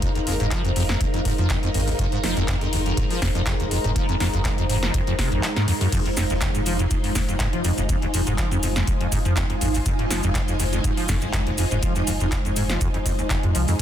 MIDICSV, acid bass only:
0, 0, Header, 1, 2, 480
1, 0, Start_track
1, 0, Key_signature, -4, "minor"
1, 0, Tempo, 491803
1, 22, Time_signature, 4, 2, 24, 8
1, 13486, End_track
2, 0, Start_track
2, 0, Title_t, "Acid bass"
2, 0, Program_c, 0, 38
2, 24, Note_on_c, 0, 41, 86
2, 94, Note_off_c, 0, 41, 0
2, 151, Note_on_c, 0, 39, 78
2, 188, Note_off_c, 0, 39, 0
2, 264, Note_on_c, 0, 41, 77
2, 334, Note_off_c, 0, 41, 0
2, 391, Note_on_c, 0, 44, 75
2, 453, Note_off_c, 0, 44, 0
2, 503, Note_on_c, 0, 53, 81
2, 609, Note_off_c, 0, 53, 0
2, 631, Note_on_c, 0, 41, 101
2, 692, Note_off_c, 0, 41, 0
2, 743, Note_on_c, 0, 41, 98
2, 813, Note_off_c, 0, 41, 0
2, 871, Note_on_c, 0, 41, 78
2, 932, Note_off_c, 0, 41, 0
2, 983, Note_on_c, 0, 39, 84
2, 1025, Note_off_c, 0, 39, 0
2, 1110, Note_on_c, 0, 41, 78
2, 1172, Note_off_c, 0, 41, 0
2, 1222, Note_on_c, 0, 44, 74
2, 1293, Note_off_c, 0, 44, 0
2, 1350, Note_on_c, 0, 53, 78
2, 1443, Note_off_c, 0, 53, 0
2, 1461, Note_on_c, 0, 41, 105
2, 1532, Note_off_c, 0, 41, 0
2, 1590, Note_on_c, 0, 41, 103
2, 1652, Note_off_c, 0, 41, 0
2, 1702, Note_on_c, 0, 41, 75
2, 1773, Note_off_c, 0, 41, 0
2, 1830, Note_on_c, 0, 39, 75
2, 1867, Note_off_c, 0, 39, 0
2, 1942, Note_on_c, 0, 41, 88
2, 2013, Note_off_c, 0, 41, 0
2, 2071, Note_on_c, 0, 44, 77
2, 2132, Note_off_c, 0, 44, 0
2, 2183, Note_on_c, 0, 53, 77
2, 2289, Note_off_c, 0, 53, 0
2, 2310, Note_on_c, 0, 41, 101
2, 2372, Note_off_c, 0, 41, 0
2, 2422, Note_on_c, 0, 41, 102
2, 2493, Note_off_c, 0, 41, 0
2, 2551, Note_on_c, 0, 41, 78
2, 2612, Note_off_c, 0, 41, 0
2, 2663, Note_on_c, 0, 39, 73
2, 2705, Note_off_c, 0, 39, 0
2, 2790, Note_on_c, 0, 41, 79
2, 2852, Note_off_c, 0, 41, 0
2, 2902, Note_on_c, 0, 44, 85
2, 2973, Note_off_c, 0, 44, 0
2, 3030, Note_on_c, 0, 53, 75
2, 3123, Note_off_c, 0, 53, 0
2, 3142, Note_on_c, 0, 41, 102
2, 3213, Note_off_c, 0, 41, 0
2, 3271, Note_on_c, 0, 41, 103
2, 3332, Note_off_c, 0, 41, 0
2, 3383, Note_on_c, 0, 41, 86
2, 3454, Note_off_c, 0, 41, 0
2, 3511, Note_on_c, 0, 39, 77
2, 3548, Note_off_c, 0, 39, 0
2, 3623, Note_on_c, 0, 41, 73
2, 3693, Note_off_c, 0, 41, 0
2, 3751, Note_on_c, 0, 44, 77
2, 3812, Note_off_c, 0, 44, 0
2, 3864, Note_on_c, 0, 53, 82
2, 3969, Note_off_c, 0, 53, 0
2, 3992, Note_on_c, 0, 41, 101
2, 4053, Note_off_c, 0, 41, 0
2, 4103, Note_on_c, 0, 41, 104
2, 4173, Note_off_c, 0, 41, 0
2, 4232, Note_on_c, 0, 41, 72
2, 4293, Note_off_c, 0, 41, 0
2, 4343, Note_on_c, 0, 39, 83
2, 4385, Note_off_c, 0, 39, 0
2, 4472, Note_on_c, 0, 41, 80
2, 4533, Note_off_c, 0, 41, 0
2, 4583, Note_on_c, 0, 44, 73
2, 4653, Note_off_c, 0, 44, 0
2, 4711, Note_on_c, 0, 53, 76
2, 4803, Note_off_c, 0, 53, 0
2, 4823, Note_on_c, 0, 41, 101
2, 4893, Note_off_c, 0, 41, 0
2, 4951, Note_on_c, 0, 41, 104
2, 5013, Note_off_c, 0, 41, 0
2, 5063, Note_on_c, 0, 48, 78
2, 5169, Note_off_c, 0, 48, 0
2, 5191, Note_on_c, 0, 41, 78
2, 5283, Note_off_c, 0, 41, 0
2, 5303, Note_on_c, 0, 53, 80
2, 5345, Note_off_c, 0, 53, 0
2, 5431, Note_on_c, 0, 44, 102
2, 5523, Note_off_c, 0, 44, 0
2, 5543, Note_on_c, 0, 41, 101
2, 5585, Note_off_c, 0, 41, 0
2, 5670, Note_on_c, 0, 42, 99
2, 5732, Note_off_c, 0, 42, 0
2, 5783, Note_on_c, 0, 41, 106
2, 5853, Note_off_c, 0, 41, 0
2, 5911, Note_on_c, 0, 41, 77
2, 5948, Note_off_c, 0, 41, 0
2, 6023, Note_on_c, 0, 41, 78
2, 6093, Note_off_c, 0, 41, 0
2, 6151, Note_on_c, 0, 39, 77
2, 6188, Note_off_c, 0, 39, 0
2, 6263, Note_on_c, 0, 41, 83
2, 6333, Note_off_c, 0, 41, 0
2, 6391, Note_on_c, 0, 44, 79
2, 6452, Note_off_c, 0, 44, 0
2, 6502, Note_on_c, 0, 53, 77
2, 6608, Note_off_c, 0, 53, 0
2, 6631, Note_on_c, 0, 41, 103
2, 6692, Note_off_c, 0, 41, 0
2, 6743, Note_on_c, 0, 41, 80
2, 6785, Note_off_c, 0, 41, 0
2, 6871, Note_on_c, 0, 41, 80
2, 6932, Note_off_c, 0, 41, 0
2, 6983, Note_on_c, 0, 39, 76
2, 7025, Note_off_c, 0, 39, 0
2, 7111, Note_on_c, 0, 41, 79
2, 7173, Note_off_c, 0, 41, 0
2, 7223, Note_on_c, 0, 44, 80
2, 7293, Note_off_c, 0, 44, 0
2, 7350, Note_on_c, 0, 53, 75
2, 7443, Note_off_c, 0, 53, 0
2, 7463, Note_on_c, 0, 41, 102
2, 7533, Note_off_c, 0, 41, 0
2, 7590, Note_on_c, 0, 41, 75
2, 7628, Note_off_c, 0, 41, 0
2, 7702, Note_on_c, 0, 41, 84
2, 7773, Note_off_c, 0, 41, 0
2, 7831, Note_on_c, 0, 39, 78
2, 7868, Note_off_c, 0, 39, 0
2, 7943, Note_on_c, 0, 41, 80
2, 8013, Note_off_c, 0, 41, 0
2, 8071, Note_on_c, 0, 44, 75
2, 8132, Note_off_c, 0, 44, 0
2, 8182, Note_on_c, 0, 53, 80
2, 8288, Note_off_c, 0, 53, 0
2, 8311, Note_on_c, 0, 41, 99
2, 8372, Note_off_c, 0, 41, 0
2, 8423, Note_on_c, 0, 41, 74
2, 8465, Note_off_c, 0, 41, 0
2, 8551, Note_on_c, 0, 41, 78
2, 8612, Note_off_c, 0, 41, 0
2, 8662, Note_on_c, 0, 39, 79
2, 8705, Note_off_c, 0, 39, 0
2, 8790, Note_on_c, 0, 41, 78
2, 8852, Note_off_c, 0, 41, 0
2, 8902, Note_on_c, 0, 44, 79
2, 8973, Note_off_c, 0, 44, 0
2, 9029, Note_on_c, 0, 53, 78
2, 9122, Note_off_c, 0, 53, 0
2, 9141, Note_on_c, 0, 41, 107
2, 9213, Note_off_c, 0, 41, 0
2, 9270, Note_on_c, 0, 41, 77
2, 9307, Note_off_c, 0, 41, 0
2, 9382, Note_on_c, 0, 41, 77
2, 9453, Note_off_c, 0, 41, 0
2, 9509, Note_on_c, 0, 39, 77
2, 9547, Note_off_c, 0, 39, 0
2, 9622, Note_on_c, 0, 41, 87
2, 9693, Note_off_c, 0, 41, 0
2, 9750, Note_on_c, 0, 44, 74
2, 9812, Note_off_c, 0, 44, 0
2, 9862, Note_on_c, 0, 53, 77
2, 9968, Note_off_c, 0, 53, 0
2, 9990, Note_on_c, 0, 41, 102
2, 10052, Note_off_c, 0, 41, 0
2, 10102, Note_on_c, 0, 41, 78
2, 10145, Note_off_c, 0, 41, 0
2, 10229, Note_on_c, 0, 41, 78
2, 10292, Note_off_c, 0, 41, 0
2, 10342, Note_on_c, 0, 39, 77
2, 10385, Note_off_c, 0, 39, 0
2, 10470, Note_on_c, 0, 41, 78
2, 10532, Note_off_c, 0, 41, 0
2, 10582, Note_on_c, 0, 44, 81
2, 10653, Note_off_c, 0, 44, 0
2, 10710, Note_on_c, 0, 53, 77
2, 10803, Note_off_c, 0, 53, 0
2, 10822, Note_on_c, 0, 41, 105
2, 10893, Note_off_c, 0, 41, 0
2, 10951, Note_on_c, 0, 41, 81
2, 10988, Note_off_c, 0, 41, 0
2, 11063, Note_on_c, 0, 41, 84
2, 11133, Note_off_c, 0, 41, 0
2, 11191, Note_on_c, 0, 39, 77
2, 11228, Note_off_c, 0, 39, 0
2, 11303, Note_on_c, 0, 41, 80
2, 11373, Note_off_c, 0, 41, 0
2, 11432, Note_on_c, 0, 44, 74
2, 11493, Note_off_c, 0, 44, 0
2, 11544, Note_on_c, 0, 53, 83
2, 11649, Note_off_c, 0, 53, 0
2, 11671, Note_on_c, 0, 41, 97
2, 11733, Note_off_c, 0, 41, 0
2, 11784, Note_on_c, 0, 41, 77
2, 11826, Note_off_c, 0, 41, 0
2, 11912, Note_on_c, 0, 41, 76
2, 11973, Note_off_c, 0, 41, 0
2, 12024, Note_on_c, 0, 39, 80
2, 12066, Note_off_c, 0, 39, 0
2, 12152, Note_on_c, 0, 41, 77
2, 12213, Note_off_c, 0, 41, 0
2, 12264, Note_on_c, 0, 44, 75
2, 12334, Note_off_c, 0, 44, 0
2, 12392, Note_on_c, 0, 53, 77
2, 12484, Note_off_c, 0, 53, 0
2, 12504, Note_on_c, 0, 41, 104
2, 12574, Note_off_c, 0, 41, 0
2, 12632, Note_on_c, 0, 41, 79
2, 12668, Note_off_c, 0, 41, 0
2, 12744, Note_on_c, 0, 41, 77
2, 12814, Note_off_c, 0, 41, 0
2, 12871, Note_on_c, 0, 39, 81
2, 12908, Note_off_c, 0, 39, 0
2, 12984, Note_on_c, 0, 41, 84
2, 13054, Note_off_c, 0, 41, 0
2, 13112, Note_on_c, 0, 44, 80
2, 13173, Note_off_c, 0, 44, 0
2, 13224, Note_on_c, 0, 53, 75
2, 13329, Note_off_c, 0, 53, 0
2, 13351, Note_on_c, 0, 41, 103
2, 13413, Note_off_c, 0, 41, 0
2, 13486, End_track
0, 0, End_of_file